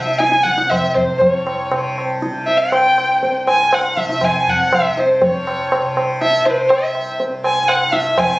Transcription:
Already playing: C2 G2 C3 E5
0.07 tabla te
0.19 G#5, tabla te
0.32 tabla te
0.43 F#5, tabla ke
0.48 C2
0.58 tabla te
0.70 E5, tabla na, tabla ge
0.94 C5, tabla ge
1.09 G2
1.18 C5, tabla tin, tabla ge
1.29 C#5
1.47 tabla na
1.69 C3, tabla na
1.98 tabla na
2.22 tabla te
2.29 C3
2.47 E5, tabla te
2.58 G5
2.72 tabla na
2.89 C2
2.98 tabla na
3.23 tabla tin
3.47 G2 G#5, tabla na
3.73 F#5, tabla na
3.97 E5, tabla ke
4.09 C3, tabla te
4.21 G#5, tabla na, tabla ge
4.48 F#5, tabla ge
4.68 C3
4.72 E5, tabla na, tabla ge
4.97 C5, tabla te
5.22 G2 C#5, tabla tin, tabla ge
5.47 tabla na
5.72 tabla na
5.81 C3
5.97 tabla na
6.21 E5, tabla te
6.39 C3
6.45 C5, tabla te
6.50 B4
6.58 C5
6.69 E5, tabla na
6.95 C2, tabla na
7.20 tabla tin
7.44 G#5, tabla na
7.57 G2
7.68 F#5, tabla na
7.93 E5, tabla te
8.14 C3, tabla na, tabla ge
8.19 G#5

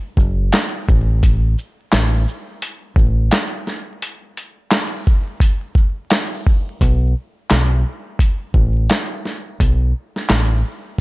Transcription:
0.17 F#1, kick, shaker
0.52 snare, clap, closed hi-hat
0.88 A1, kick, shaker
1.23 kick, closed hi-hat
1.58 shaker
1.92 A1, snare, clap, closed hi-hat
2.28 shaker
2.62 closed hi-hat
2.96 A1, kick, shaker
3.31 snare, clap, closed hi-hat
3.67 snare, shaker
4.02 closed hi-hat
4.37 closed hi-hat, shaker
4.71 snare, clap, closed hi-hat
5.07 kick, shaker
5.40 kick, closed hi-hat
5.75 kick, shaker
6.10 snare, clap, closed hi-hat
6.46 kick, shaker
6.81 B1, kick, closed hi-hat
7.50 B1, snare, clap, closed hi-hat
8.19 kick, closed hi-hat
8.54 A1, kick
8.89 snare, clap, closed hi-hat
9.25 snare
9.60 B1, kick, closed hi-hat
10.16 snare
10.29 A1, snare, clap, closed hi-hat

